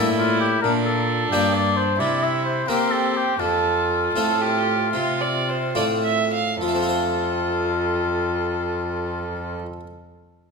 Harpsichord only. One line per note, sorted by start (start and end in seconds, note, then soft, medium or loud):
0.00 0.60 A2 soft
0.00 0.45 A#3 soft
0.00 0.45 D4 soft
0.00 0.46 G4 soft
0.64 1.28 A#2 medium
1.33 1.96 G2 soft
1.33 1.81 A#3 soft
1.33 1.82 D4 soft
1.33 1.82 G4 soft
2.00 2.65 C3 soft
2.68 3.20 A#3 soft
2.68 3.21 C4 soft
2.68 3.21 G4 soft
3.40 4.11 F2 soft
4.16 4.89 A2 soft
4.16 4.72 A3 soft
4.16 4.72 C4 soft
4.16 4.72 F4 soft
4.93 5.70 C3 soft
5.75 6.57 A2 soft
5.75 6.37 A3 soft
5.75 6.37 C4 soft
5.75 6.38 F4 soft
6.61 9.59 F3 soft
6.68 9.66 A3 soft
6.75 9.73 C4 soft
6.82 9.80 F4 soft
6.89 9.87 C5 soft